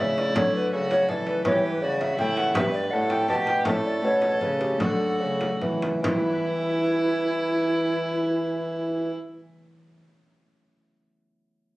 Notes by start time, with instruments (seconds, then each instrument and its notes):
Already playing: harp A2 B2 A3 C#4 E4, violin E4
0.00 bassoon C#3, harp C#3, recorder E5
0.18 recorder D5, frame drum
0.32 bassoon D3, harp F#3 A3 F#4 D5, frame drum
0.37 recorder C#5
0.55 recorder B4
0.72 bassoon C#3, harp C#3, violin F#4, recorder A4
0.91 recorder C#5, frame drum
1.09 bassoon E3, harp E3, violin A4, recorder D5, frame drum
1.27 recorder B4, frame drum
1.45 bassoon E3, harp E3 G3 B3, violin G4, recorder C#5, frame drum
1.65 recorder B4
1.82 bassoon C#3, harp C#3, violin F#4, recorder D5
2.01 recorder E5, frame drum
2.18 bassoon A2, harp A2, violin E4, recorder G5, frame drum
2.37 recorder F#5, frame drum
2.53 bassoon G2, harp B3 G4, violin B4, recorder E5, frame drum
2.57 harp G2
2.73 recorder D5
2.91 bassoon A2, harp A2, violin A4, recorder F#5
3.10 recorder G5, frame drum
3.28 bassoon B2, harp B2, violin G4, recorder A5, frame drum
3.47 recorder G5, frame drum
3.64 bassoon A2, harp A2 A3 C#4 E4, violin A4, recorder E5, frame drum
3.85 recorder D5
4.00 bassoon B2, harp B2 A3 C#4 E4, recorder C#5
4.22 frame drum
4.41 harp C#3, bassoon C#3, recorder B4, frame drum
4.60 recorder G4, frame drum
4.77 bassoon D3, harp F#3 A3 F#4 D5, frame drum
4.81 violin F#4, recorder A4
5.21 bassoon C#3, harp C#3
5.41 frame drum
5.61 bassoon E3, harp E3, frame drum
5.82 frame drum
6.03 bassoon E3, harp E3, recorder E4, violin E4, frame drum
6.12 harp G3
6.19 harp B3
6.26 harp E4
6.33 harp B4